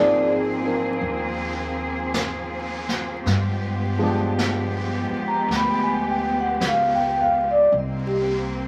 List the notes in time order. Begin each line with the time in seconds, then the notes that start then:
Already playing: G#1 F3 A#3 C4 D#4 G#4 D5
0.22 G#4
0.64 C4 D4 F4 A#4
1.01 D#2, brush sweep
2.14 brush sweep, snare, hi-hat pedal
2.89 snare
3.26 G2 G#3 B3 G4, brush sweep, snare
3.98 F3 G#3 B3 D4
4.03 G4
4.39 brush sweep, snare, hi-hat pedal
5.11 muted upright bass stroke
5.28 A#5
5.48 D2, brush sweep, snare
5.56 B5
5.83 G#5
6.10 G5
6.40 F#5
6.60 C#2, brush sweep, snare, hi-hat pedal
6.68 F5
6.95 G5
7.21 F5
7.51 D5
7.72 C2 A#3 C4, brush sweep
7.78 D#5
8.07 G4